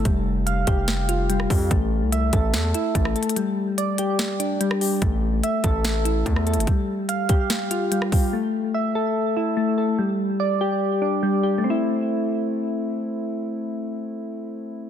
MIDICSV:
0, 0, Header, 1, 4, 480
1, 0, Start_track
1, 0, Key_signature, 0, "minor"
1, 0, Tempo, 413793
1, 63, Time_signature, 4, 2, 24, 8
1, 17283, End_track
2, 0, Start_track
2, 0, Title_t, "Synth keys"
2, 0, Program_c, 0, 88
2, 67, Note_on_c, 0, 55, 81
2, 539, Note_on_c, 0, 77, 86
2, 781, Note_on_c, 0, 67, 95
2, 1261, Note_on_c, 0, 65, 82
2, 1487, Note_off_c, 0, 55, 0
2, 1501, Note_on_c, 0, 55, 93
2, 1731, Note_off_c, 0, 67, 0
2, 1745, Note_on_c, 0, 67, 80
2, 1981, Note_off_c, 0, 77, 0
2, 1982, Note_off_c, 0, 55, 0
2, 1982, Note_off_c, 0, 65, 0
2, 1983, Note_off_c, 0, 67, 0
2, 1984, Note_on_c, 0, 57, 84
2, 2463, Note_on_c, 0, 76, 85
2, 2704, Note_on_c, 0, 69, 91
2, 3186, Note_on_c, 0, 64, 82
2, 3407, Note_off_c, 0, 57, 0
2, 3421, Note_on_c, 0, 57, 96
2, 3650, Note_off_c, 0, 69, 0
2, 3664, Note_on_c, 0, 69, 79
2, 3902, Note_off_c, 0, 57, 0
2, 3903, Note_off_c, 0, 69, 0
2, 3903, Note_off_c, 0, 76, 0
2, 3904, Note_off_c, 0, 64, 0
2, 3904, Note_on_c, 0, 55, 84
2, 4382, Note_on_c, 0, 74, 89
2, 4626, Note_on_c, 0, 67, 95
2, 5100, Note_on_c, 0, 62, 84
2, 5328, Note_off_c, 0, 55, 0
2, 5342, Note_on_c, 0, 55, 92
2, 5568, Note_off_c, 0, 67, 0
2, 5582, Note_on_c, 0, 67, 84
2, 5821, Note_off_c, 0, 62, 0
2, 5822, Note_off_c, 0, 55, 0
2, 5822, Note_off_c, 0, 67, 0
2, 5822, Note_off_c, 0, 74, 0
2, 5823, Note_on_c, 0, 57, 86
2, 6305, Note_on_c, 0, 76, 92
2, 6544, Note_on_c, 0, 69, 100
2, 7017, Note_on_c, 0, 64, 79
2, 7247, Note_off_c, 0, 57, 0
2, 7261, Note_on_c, 0, 57, 91
2, 7489, Note_off_c, 0, 69, 0
2, 7503, Note_on_c, 0, 69, 89
2, 7740, Note_off_c, 0, 64, 0
2, 7741, Note_off_c, 0, 57, 0
2, 7743, Note_off_c, 0, 69, 0
2, 7744, Note_off_c, 0, 76, 0
2, 7748, Note_on_c, 0, 55, 86
2, 8221, Note_on_c, 0, 77, 90
2, 8463, Note_on_c, 0, 67, 96
2, 8942, Note_on_c, 0, 65, 83
2, 9167, Note_off_c, 0, 55, 0
2, 9181, Note_on_c, 0, 55, 94
2, 9410, Note_off_c, 0, 67, 0
2, 9424, Note_on_c, 0, 67, 76
2, 9662, Note_off_c, 0, 55, 0
2, 9662, Note_off_c, 0, 65, 0
2, 9662, Note_off_c, 0, 77, 0
2, 9663, Note_off_c, 0, 67, 0
2, 9665, Note_on_c, 0, 57, 86
2, 10143, Note_on_c, 0, 76, 86
2, 10385, Note_on_c, 0, 69, 92
2, 10865, Note_on_c, 0, 64, 81
2, 11085, Note_off_c, 0, 57, 0
2, 11099, Note_on_c, 0, 57, 96
2, 11329, Note_off_c, 0, 69, 0
2, 11342, Note_on_c, 0, 69, 76
2, 11581, Note_off_c, 0, 57, 0
2, 11582, Note_off_c, 0, 69, 0
2, 11583, Note_off_c, 0, 76, 0
2, 11583, Note_on_c, 0, 55, 79
2, 11584, Note_off_c, 0, 64, 0
2, 12062, Note_on_c, 0, 74, 91
2, 12306, Note_on_c, 0, 67, 96
2, 12780, Note_on_c, 0, 62, 81
2, 13009, Note_off_c, 0, 55, 0
2, 13023, Note_on_c, 0, 55, 93
2, 13249, Note_off_c, 0, 67, 0
2, 13263, Note_on_c, 0, 67, 84
2, 13434, Note_on_c, 0, 57, 82
2, 13501, Note_off_c, 0, 62, 0
2, 13502, Note_off_c, 0, 74, 0
2, 13503, Note_off_c, 0, 55, 0
2, 13503, Note_off_c, 0, 67, 0
2, 13504, Note_on_c, 0, 60, 75
2, 13574, Note_on_c, 0, 64, 91
2, 17283, Note_off_c, 0, 57, 0
2, 17283, Note_off_c, 0, 60, 0
2, 17283, Note_off_c, 0, 64, 0
2, 17283, End_track
3, 0, Start_track
3, 0, Title_t, "808-style bass"
3, 0, Program_c, 1, 38
3, 61, Note_on_c, 1, 29, 114
3, 753, Note_off_c, 1, 29, 0
3, 781, Note_on_c, 1, 29, 105
3, 1703, Note_off_c, 1, 29, 0
3, 1742, Note_on_c, 1, 41, 107
3, 1973, Note_off_c, 1, 41, 0
3, 1983, Note_on_c, 1, 33, 108
3, 2342, Note_on_c, 1, 36, 96
3, 2359, Note_off_c, 1, 33, 0
3, 2684, Note_off_c, 1, 36, 0
3, 2703, Note_on_c, 1, 33, 106
3, 2943, Note_on_c, 1, 40, 101
3, 2960, Note_off_c, 1, 33, 0
3, 3171, Note_off_c, 1, 40, 0
3, 3422, Note_on_c, 1, 33, 107
3, 3653, Note_off_c, 1, 33, 0
3, 5822, Note_on_c, 1, 33, 113
3, 6283, Note_off_c, 1, 33, 0
3, 6542, Note_on_c, 1, 33, 107
3, 7233, Note_off_c, 1, 33, 0
3, 7261, Note_on_c, 1, 40, 104
3, 7621, Note_on_c, 1, 31, 101
3, 7639, Note_off_c, 1, 40, 0
3, 7736, Note_off_c, 1, 31, 0
3, 17283, End_track
4, 0, Start_track
4, 0, Title_t, "Drums"
4, 60, Note_on_c, 9, 42, 82
4, 61, Note_on_c, 9, 36, 116
4, 176, Note_off_c, 9, 42, 0
4, 177, Note_off_c, 9, 36, 0
4, 542, Note_on_c, 9, 42, 78
4, 658, Note_off_c, 9, 42, 0
4, 778, Note_on_c, 9, 42, 78
4, 781, Note_on_c, 9, 36, 84
4, 894, Note_off_c, 9, 42, 0
4, 897, Note_off_c, 9, 36, 0
4, 1018, Note_on_c, 9, 42, 77
4, 1019, Note_on_c, 9, 38, 99
4, 1134, Note_off_c, 9, 42, 0
4, 1135, Note_off_c, 9, 38, 0
4, 1262, Note_on_c, 9, 42, 85
4, 1378, Note_off_c, 9, 42, 0
4, 1503, Note_on_c, 9, 42, 76
4, 1619, Note_off_c, 9, 42, 0
4, 1621, Note_on_c, 9, 37, 93
4, 1737, Note_off_c, 9, 37, 0
4, 1742, Note_on_c, 9, 36, 89
4, 1742, Note_on_c, 9, 46, 85
4, 1858, Note_off_c, 9, 36, 0
4, 1858, Note_off_c, 9, 46, 0
4, 1982, Note_on_c, 9, 36, 118
4, 1983, Note_on_c, 9, 42, 80
4, 2098, Note_off_c, 9, 36, 0
4, 2099, Note_off_c, 9, 42, 0
4, 2465, Note_on_c, 9, 42, 74
4, 2581, Note_off_c, 9, 42, 0
4, 2701, Note_on_c, 9, 42, 80
4, 2703, Note_on_c, 9, 36, 88
4, 2817, Note_off_c, 9, 42, 0
4, 2819, Note_off_c, 9, 36, 0
4, 2941, Note_on_c, 9, 42, 75
4, 2943, Note_on_c, 9, 38, 105
4, 3057, Note_off_c, 9, 42, 0
4, 3059, Note_off_c, 9, 38, 0
4, 3184, Note_on_c, 9, 42, 77
4, 3300, Note_off_c, 9, 42, 0
4, 3422, Note_on_c, 9, 36, 95
4, 3424, Note_on_c, 9, 42, 79
4, 3538, Note_off_c, 9, 36, 0
4, 3540, Note_off_c, 9, 42, 0
4, 3541, Note_on_c, 9, 37, 97
4, 3657, Note_off_c, 9, 37, 0
4, 3662, Note_on_c, 9, 42, 47
4, 3742, Note_off_c, 9, 42, 0
4, 3742, Note_on_c, 9, 42, 63
4, 3822, Note_off_c, 9, 42, 0
4, 3822, Note_on_c, 9, 42, 84
4, 3902, Note_off_c, 9, 42, 0
4, 3902, Note_on_c, 9, 42, 80
4, 4018, Note_off_c, 9, 42, 0
4, 4384, Note_on_c, 9, 42, 76
4, 4500, Note_off_c, 9, 42, 0
4, 4620, Note_on_c, 9, 42, 78
4, 4736, Note_off_c, 9, 42, 0
4, 4861, Note_on_c, 9, 42, 74
4, 4862, Note_on_c, 9, 38, 105
4, 4977, Note_off_c, 9, 42, 0
4, 4978, Note_off_c, 9, 38, 0
4, 5104, Note_on_c, 9, 42, 85
4, 5220, Note_off_c, 9, 42, 0
4, 5344, Note_on_c, 9, 42, 77
4, 5460, Note_off_c, 9, 42, 0
4, 5462, Note_on_c, 9, 37, 95
4, 5578, Note_off_c, 9, 37, 0
4, 5583, Note_on_c, 9, 46, 81
4, 5699, Note_off_c, 9, 46, 0
4, 5821, Note_on_c, 9, 42, 79
4, 5822, Note_on_c, 9, 36, 115
4, 5937, Note_off_c, 9, 42, 0
4, 5938, Note_off_c, 9, 36, 0
4, 6305, Note_on_c, 9, 42, 75
4, 6421, Note_off_c, 9, 42, 0
4, 6540, Note_on_c, 9, 42, 76
4, 6542, Note_on_c, 9, 36, 91
4, 6656, Note_off_c, 9, 42, 0
4, 6658, Note_off_c, 9, 36, 0
4, 6781, Note_on_c, 9, 42, 75
4, 6782, Note_on_c, 9, 38, 104
4, 6897, Note_off_c, 9, 42, 0
4, 6898, Note_off_c, 9, 38, 0
4, 7023, Note_on_c, 9, 42, 74
4, 7139, Note_off_c, 9, 42, 0
4, 7261, Note_on_c, 9, 36, 95
4, 7263, Note_on_c, 9, 42, 75
4, 7377, Note_off_c, 9, 36, 0
4, 7379, Note_off_c, 9, 42, 0
4, 7382, Note_on_c, 9, 37, 93
4, 7498, Note_off_c, 9, 37, 0
4, 7501, Note_on_c, 9, 42, 46
4, 7581, Note_off_c, 9, 42, 0
4, 7581, Note_on_c, 9, 42, 63
4, 7660, Note_off_c, 9, 42, 0
4, 7660, Note_on_c, 9, 42, 83
4, 7740, Note_off_c, 9, 42, 0
4, 7740, Note_on_c, 9, 42, 80
4, 7741, Note_on_c, 9, 36, 122
4, 7856, Note_off_c, 9, 42, 0
4, 7857, Note_off_c, 9, 36, 0
4, 8223, Note_on_c, 9, 42, 74
4, 8339, Note_off_c, 9, 42, 0
4, 8458, Note_on_c, 9, 42, 77
4, 8461, Note_on_c, 9, 36, 90
4, 8574, Note_off_c, 9, 42, 0
4, 8577, Note_off_c, 9, 36, 0
4, 8699, Note_on_c, 9, 42, 76
4, 8700, Note_on_c, 9, 38, 101
4, 8815, Note_off_c, 9, 42, 0
4, 8816, Note_off_c, 9, 38, 0
4, 8942, Note_on_c, 9, 42, 81
4, 9058, Note_off_c, 9, 42, 0
4, 9184, Note_on_c, 9, 42, 78
4, 9300, Note_off_c, 9, 42, 0
4, 9301, Note_on_c, 9, 37, 91
4, 9417, Note_off_c, 9, 37, 0
4, 9422, Note_on_c, 9, 36, 91
4, 9422, Note_on_c, 9, 46, 82
4, 9538, Note_off_c, 9, 36, 0
4, 9538, Note_off_c, 9, 46, 0
4, 17283, End_track
0, 0, End_of_file